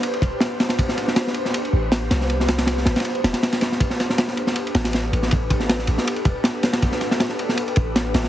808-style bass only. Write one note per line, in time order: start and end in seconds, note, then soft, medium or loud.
0.22 0.31 E1 loud
1.73 2.09 A1 loud
2.11 2.85 C2 medium
2.86 2.95 A1 medium
3.24 3.33 E1 loud
4.75 5.11 A1 loud
5.13 5.87 A1 loud
5.88 5.97 A1 medium
6.25 6.35 E1 medium
7.77 8.13 A1 loud
8.14 8.29 A1 medium